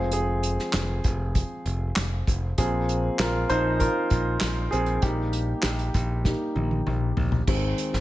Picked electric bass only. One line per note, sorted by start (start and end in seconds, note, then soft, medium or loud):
0.00 0.57 F1 medium
0.74 0.99 F1 medium
1.05 1.42 F1 medium
1.66 1.91 F1 medium
1.96 2.21 F1 medium
2.28 2.53 F1 medium
2.58 3.08 A#1 medium
3.19 3.44 A#1 medium
3.50 3.88 A#1 loud
4.11 4.36 A#1 medium
4.42 4.67 A#1 medium
4.73 4.98 A#1 medium
5.02 5.53 A#1 medium
5.64 5.89 A#1 medium
5.95 6.32 A#1 medium
6.56 6.81 A#1 medium
6.87 7.12 A#1 medium
7.17 7.42 A#1 medium
7.48 7.73 G#1 medium
7.94 8.00 G#1 medium